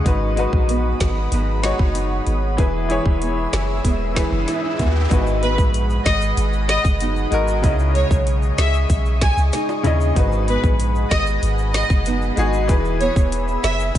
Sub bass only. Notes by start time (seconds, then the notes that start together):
0.06 G#1
0.53 A#1
1.01 G#1
1.32 G#1
1.79 F#1
2.27 G#1
2.58 E1
3.06 E1
3.53 F#1
3.84 E1
4.32 F#1
4.79 D#2
5.11 G#1
5.58 A#1
6.06 G#1
6.37 G#1
6.85 F#1
7.32 G#1
7.64 C#2
8.11 B1
8.58 C#2
8.90 B1
9.37 C#2
9.85 D#2
10.16 G#1
10.64 A#1
11.11 G#1
11.43 G#1
11.90 F#1
12.38 G#1
12.69 E1
13.16 E1
13.64 F#1
13.95 E1